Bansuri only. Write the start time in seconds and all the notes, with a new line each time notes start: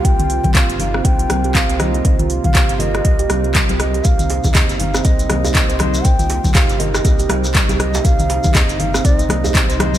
0.04 G5
0.54 F5
0.79 F5
1.05 G5
1.55 F5
1.79 D#5
2.44 F5
2.79 D#5
3.80 D#5
4.05 F5
4.54 D#5
4.79 F5
5.04 D#5
5.79 D#5
6.04 G5
6.54 F5
6.79 D#5
7.79 D#5
8.04 F5
8.54 D#5
8.79 F5
9.05 D5
9.19 D#5
9.80 D#5